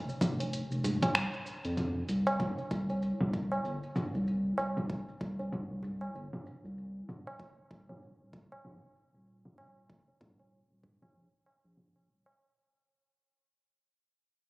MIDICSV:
0, 0, Header, 1, 4, 480
1, 0, Start_track
1, 0, Tempo, 625000
1, 1842, Time_signature, 4, 2, 24, 8
1, 11128, End_track
2, 0, Start_track
2, 0, Title_t, "Analog synth bass"
2, 0, Program_c, 0, 38
2, 163, Note_on_c, 0, 29, 102
2, 484, Note_off_c, 0, 29, 0
2, 544, Note_on_c, 0, 29, 84
2, 840, Note_off_c, 0, 29, 0
2, 883, Note_on_c, 0, 36, 84
2, 986, Note_off_c, 0, 36, 0
2, 1266, Note_on_c, 0, 41, 80
2, 1561, Note_off_c, 0, 41, 0
2, 1603, Note_on_c, 0, 36, 90
2, 1923, Note_off_c, 0, 36, 0
2, 2081, Note_on_c, 0, 36, 89
2, 2403, Note_off_c, 0, 36, 0
2, 2463, Note_on_c, 0, 36, 84
2, 2760, Note_off_c, 0, 36, 0
2, 2803, Note_on_c, 0, 31, 85
2, 2906, Note_off_c, 0, 31, 0
2, 3186, Note_on_c, 0, 36, 77
2, 3481, Note_off_c, 0, 36, 0
2, 3522, Note_on_c, 0, 36, 79
2, 3843, Note_off_c, 0, 36, 0
2, 4000, Note_on_c, 0, 36, 93
2, 4322, Note_off_c, 0, 36, 0
2, 4382, Note_on_c, 0, 36, 89
2, 4679, Note_off_c, 0, 36, 0
2, 4721, Note_on_c, 0, 31, 90
2, 4825, Note_off_c, 0, 31, 0
2, 5101, Note_on_c, 0, 36, 81
2, 5399, Note_off_c, 0, 36, 0
2, 5441, Note_on_c, 0, 27, 78
2, 5762, Note_off_c, 0, 27, 0
2, 5920, Note_on_c, 0, 27, 89
2, 6242, Note_off_c, 0, 27, 0
2, 6302, Note_on_c, 0, 27, 80
2, 6599, Note_off_c, 0, 27, 0
2, 6639, Note_on_c, 0, 34, 81
2, 6744, Note_off_c, 0, 34, 0
2, 7023, Note_on_c, 0, 27, 76
2, 7320, Note_off_c, 0, 27, 0
2, 7362, Note_on_c, 0, 27, 82
2, 7683, Note_off_c, 0, 27, 0
2, 7841, Note_on_c, 0, 27, 87
2, 8163, Note_off_c, 0, 27, 0
2, 8222, Note_on_c, 0, 27, 89
2, 8519, Note_off_c, 0, 27, 0
2, 8561, Note_on_c, 0, 34, 82
2, 8665, Note_off_c, 0, 34, 0
2, 8943, Note_on_c, 0, 34, 84
2, 9282, Note_on_c, 0, 27, 87
2, 9294, Note_off_c, 0, 34, 0
2, 9469, Note_off_c, 0, 27, 0
2, 11128, End_track
3, 0, Start_track
3, 0, Title_t, "Tabla"
3, 66, Note_on_c, 9, 63, 35
3, 143, Note_off_c, 9, 63, 0
3, 306, Note_on_c, 9, 63, 54
3, 383, Note_off_c, 9, 63, 0
3, 648, Note_on_c, 9, 64, 80
3, 725, Note_off_c, 9, 64, 0
3, 789, Note_on_c, 9, 60, 57
3, 865, Note_off_c, 9, 60, 0
3, 882, Note_on_c, 9, 63, 48
3, 959, Note_off_c, 9, 63, 0
3, 1121, Note_on_c, 9, 63, 30
3, 1198, Note_off_c, 9, 63, 0
3, 1741, Note_on_c, 9, 60, 68
3, 1818, Note_off_c, 9, 60, 0
3, 1979, Note_on_c, 9, 63, 34
3, 2056, Note_off_c, 9, 63, 0
3, 2225, Note_on_c, 9, 63, 65
3, 2302, Note_off_c, 9, 63, 0
3, 2700, Note_on_c, 9, 60, 57
3, 2777, Note_off_c, 9, 60, 0
3, 3515, Note_on_c, 9, 60, 64
3, 3592, Note_off_c, 9, 60, 0
3, 3895, Note_on_c, 9, 63, 36
3, 3972, Note_off_c, 9, 63, 0
3, 4142, Note_on_c, 9, 63, 60
3, 4219, Note_off_c, 9, 63, 0
3, 4475, Note_on_c, 9, 64, 70
3, 4552, Note_off_c, 9, 64, 0
3, 4617, Note_on_c, 9, 60, 53
3, 4693, Note_off_c, 9, 60, 0
3, 4726, Note_on_c, 9, 63, 48
3, 4803, Note_off_c, 9, 63, 0
3, 4959, Note_on_c, 9, 63, 32
3, 5036, Note_off_c, 9, 63, 0
3, 5585, Note_on_c, 9, 60, 70
3, 5662, Note_off_c, 9, 60, 0
3, 5824, Note_on_c, 9, 63, 32
3, 5900, Note_off_c, 9, 63, 0
3, 6062, Note_on_c, 9, 63, 61
3, 6139, Note_off_c, 9, 63, 0
3, 6544, Note_on_c, 9, 60, 62
3, 6621, Note_off_c, 9, 60, 0
3, 7357, Note_on_c, 9, 60, 66
3, 7434, Note_off_c, 9, 60, 0
3, 7742, Note_on_c, 9, 63, 36
3, 7818, Note_off_c, 9, 63, 0
3, 7984, Note_on_c, 9, 63, 60
3, 8060, Note_off_c, 9, 63, 0
3, 8322, Note_on_c, 9, 64, 71
3, 8399, Note_off_c, 9, 64, 0
3, 8466, Note_on_c, 9, 60, 56
3, 8543, Note_off_c, 9, 60, 0
3, 8558, Note_on_c, 9, 63, 48
3, 8635, Note_off_c, 9, 63, 0
3, 8804, Note_on_c, 9, 60, 53
3, 8805, Note_on_c, 9, 63, 33
3, 8880, Note_off_c, 9, 60, 0
3, 8882, Note_off_c, 9, 63, 0
3, 9184, Note_on_c, 9, 60, 34
3, 9260, Note_off_c, 9, 60, 0
3, 9417, Note_on_c, 9, 60, 70
3, 9494, Note_off_c, 9, 60, 0
3, 11128, End_track
4, 0, Start_track
4, 0, Title_t, "Drums"
4, 70, Note_on_c, 9, 82, 30
4, 147, Note_off_c, 9, 82, 0
4, 163, Note_on_c, 9, 36, 106
4, 167, Note_on_c, 9, 42, 26
4, 167, Note_on_c, 9, 45, 71
4, 169, Note_on_c, 9, 82, 73
4, 239, Note_off_c, 9, 36, 0
4, 244, Note_off_c, 9, 42, 0
4, 244, Note_off_c, 9, 45, 0
4, 245, Note_off_c, 9, 82, 0
4, 310, Note_on_c, 9, 42, 42
4, 311, Note_on_c, 9, 82, 33
4, 387, Note_off_c, 9, 42, 0
4, 388, Note_off_c, 9, 82, 0
4, 409, Note_on_c, 9, 42, 47
4, 410, Note_on_c, 9, 82, 41
4, 486, Note_off_c, 9, 42, 0
4, 487, Note_off_c, 9, 82, 0
4, 550, Note_on_c, 9, 82, 29
4, 626, Note_off_c, 9, 82, 0
4, 648, Note_on_c, 9, 42, 28
4, 649, Note_on_c, 9, 82, 74
4, 725, Note_off_c, 9, 42, 0
4, 726, Note_off_c, 9, 82, 0
4, 787, Note_on_c, 9, 42, 37
4, 787, Note_on_c, 9, 45, 70
4, 789, Note_on_c, 9, 82, 32
4, 864, Note_off_c, 9, 42, 0
4, 864, Note_off_c, 9, 45, 0
4, 865, Note_off_c, 9, 82, 0
4, 883, Note_on_c, 9, 26, 76
4, 883, Note_on_c, 9, 42, 47
4, 885, Note_on_c, 9, 82, 43
4, 960, Note_off_c, 9, 26, 0
4, 960, Note_off_c, 9, 42, 0
4, 961, Note_off_c, 9, 82, 0
4, 1026, Note_on_c, 9, 82, 29
4, 1102, Note_off_c, 9, 82, 0
4, 1124, Note_on_c, 9, 82, 71
4, 1201, Note_off_c, 9, 82, 0
4, 1265, Note_on_c, 9, 42, 35
4, 1266, Note_on_c, 9, 82, 31
4, 1341, Note_off_c, 9, 42, 0
4, 1343, Note_off_c, 9, 82, 0
4, 1362, Note_on_c, 9, 42, 45
4, 1362, Note_on_c, 9, 45, 62
4, 1363, Note_on_c, 9, 82, 42
4, 1439, Note_off_c, 9, 42, 0
4, 1439, Note_off_c, 9, 45, 0
4, 1440, Note_off_c, 9, 82, 0
4, 1602, Note_on_c, 9, 42, 41
4, 1603, Note_on_c, 9, 82, 74
4, 1678, Note_off_c, 9, 42, 0
4, 1680, Note_off_c, 9, 82, 0
4, 1743, Note_on_c, 9, 42, 44
4, 1744, Note_on_c, 9, 82, 30
4, 1820, Note_off_c, 9, 42, 0
4, 1821, Note_off_c, 9, 82, 0
4, 1842, Note_on_c, 9, 36, 105
4, 1843, Note_on_c, 9, 45, 75
4, 1844, Note_on_c, 9, 82, 44
4, 1918, Note_off_c, 9, 36, 0
4, 1920, Note_off_c, 9, 45, 0
4, 1921, Note_off_c, 9, 82, 0
4, 1983, Note_on_c, 9, 82, 26
4, 2060, Note_off_c, 9, 82, 0
4, 2081, Note_on_c, 9, 36, 93
4, 2081, Note_on_c, 9, 82, 67
4, 2158, Note_off_c, 9, 36, 0
4, 2158, Note_off_c, 9, 82, 0
4, 2222, Note_on_c, 9, 82, 33
4, 2299, Note_off_c, 9, 82, 0
4, 2322, Note_on_c, 9, 82, 40
4, 2399, Note_off_c, 9, 82, 0
4, 2462, Note_on_c, 9, 45, 77
4, 2539, Note_off_c, 9, 45, 0
4, 2561, Note_on_c, 9, 36, 93
4, 2561, Note_on_c, 9, 82, 68
4, 2637, Note_off_c, 9, 82, 0
4, 2638, Note_off_c, 9, 36, 0
4, 2705, Note_on_c, 9, 82, 32
4, 2782, Note_off_c, 9, 82, 0
4, 2803, Note_on_c, 9, 82, 42
4, 2880, Note_off_c, 9, 82, 0
4, 2943, Note_on_c, 9, 82, 27
4, 3020, Note_off_c, 9, 82, 0
4, 3039, Note_on_c, 9, 45, 66
4, 3041, Note_on_c, 9, 82, 69
4, 3116, Note_off_c, 9, 45, 0
4, 3117, Note_off_c, 9, 82, 0
4, 3184, Note_on_c, 9, 82, 29
4, 3261, Note_off_c, 9, 82, 0
4, 3283, Note_on_c, 9, 82, 36
4, 3359, Note_off_c, 9, 82, 0
4, 3523, Note_on_c, 9, 82, 70
4, 3599, Note_off_c, 9, 82, 0
4, 3664, Note_on_c, 9, 45, 75
4, 3665, Note_on_c, 9, 82, 29
4, 3741, Note_off_c, 9, 45, 0
4, 3742, Note_off_c, 9, 82, 0
4, 3760, Note_on_c, 9, 36, 98
4, 3765, Note_on_c, 9, 82, 39
4, 3837, Note_off_c, 9, 36, 0
4, 3842, Note_off_c, 9, 82, 0
4, 3906, Note_on_c, 9, 82, 27
4, 3983, Note_off_c, 9, 82, 0
4, 4000, Note_on_c, 9, 36, 91
4, 4005, Note_on_c, 9, 82, 69
4, 4077, Note_off_c, 9, 36, 0
4, 4082, Note_off_c, 9, 82, 0
4, 4146, Note_on_c, 9, 82, 30
4, 4222, Note_off_c, 9, 82, 0
4, 4243, Note_on_c, 9, 45, 72
4, 4245, Note_on_c, 9, 82, 38
4, 4320, Note_off_c, 9, 45, 0
4, 4322, Note_off_c, 9, 82, 0
4, 4485, Note_on_c, 9, 82, 69
4, 4562, Note_off_c, 9, 82, 0
4, 4626, Note_on_c, 9, 82, 28
4, 4703, Note_off_c, 9, 82, 0
4, 4726, Note_on_c, 9, 82, 40
4, 4803, Note_off_c, 9, 82, 0
4, 4863, Note_on_c, 9, 45, 77
4, 4865, Note_on_c, 9, 82, 26
4, 4940, Note_off_c, 9, 45, 0
4, 4941, Note_off_c, 9, 82, 0
4, 4965, Note_on_c, 9, 82, 68
4, 5042, Note_off_c, 9, 82, 0
4, 5108, Note_on_c, 9, 82, 27
4, 5185, Note_off_c, 9, 82, 0
4, 5205, Note_on_c, 9, 82, 36
4, 5282, Note_off_c, 9, 82, 0
4, 5444, Note_on_c, 9, 45, 74
4, 5446, Note_on_c, 9, 82, 70
4, 5521, Note_off_c, 9, 45, 0
4, 5522, Note_off_c, 9, 82, 0
4, 5680, Note_on_c, 9, 36, 97
4, 5685, Note_on_c, 9, 82, 39
4, 5757, Note_off_c, 9, 36, 0
4, 5761, Note_off_c, 9, 82, 0
4, 5825, Note_on_c, 9, 82, 26
4, 5902, Note_off_c, 9, 82, 0
4, 5919, Note_on_c, 9, 36, 87
4, 5925, Note_on_c, 9, 82, 62
4, 5996, Note_off_c, 9, 36, 0
4, 6001, Note_off_c, 9, 82, 0
4, 6062, Note_on_c, 9, 45, 77
4, 6064, Note_on_c, 9, 82, 29
4, 6139, Note_off_c, 9, 45, 0
4, 6140, Note_off_c, 9, 82, 0
4, 6163, Note_on_c, 9, 82, 36
4, 6240, Note_off_c, 9, 82, 0
4, 6400, Note_on_c, 9, 36, 89
4, 6401, Note_on_c, 9, 82, 68
4, 6476, Note_off_c, 9, 36, 0
4, 6478, Note_off_c, 9, 82, 0
4, 6641, Note_on_c, 9, 45, 76
4, 6643, Note_on_c, 9, 82, 41
4, 6718, Note_off_c, 9, 45, 0
4, 6720, Note_off_c, 9, 82, 0
4, 6784, Note_on_c, 9, 82, 26
4, 6860, Note_off_c, 9, 82, 0
4, 6881, Note_on_c, 9, 82, 62
4, 6958, Note_off_c, 9, 82, 0
4, 7023, Note_on_c, 9, 82, 27
4, 7100, Note_off_c, 9, 82, 0
4, 7120, Note_on_c, 9, 82, 35
4, 7196, Note_off_c, 9, 82, 0
4, 7260, Note_on_c, 9, 45, 74
4, 7337, Note_off_c, 9, 45, 0
4, 7359, Note_on_c, 9, 82, 69
4, 7436, Note_off_c, 9, 82, 0
4, 7501, Note_on_c, 9, 82, 30
4, 7577, Note_off_c, 9, 82, 0
4, 7600, Note_on_c, 9, 36, 102
4, 7677, Note_off_c, 9, 36, 0
4, 7742, Note_on_c, 9, 82, 28
4, 7819, Note_off_c, 9, 82, 0
4, 7839, Note_on_c, 9, 45, 67
4, 7841, Note_on_c, 9, 36, 91
4, 7916, Note_off_c, 9, 45, 0
4, 7917, Note_off_c, 9, 36, 0
4, 8082, Note_on_c, 9, 82, 36
4, 8159, Note_off_c, 9, 82, 0
4, 8321, Note_on_c, 9, 36, 53
4, 8398, Note_off_c, 9, 36, 0
4, 8465, Note_on_c, 9, 45, 77
4, 8541, Note_off_c, 9, 45, 0
4, 9042, Note_on_c, 9, 45, 71
4, 9119, Note_off_c, 9, 45, 0
4, 11128, End_track
0, 0, End_of_file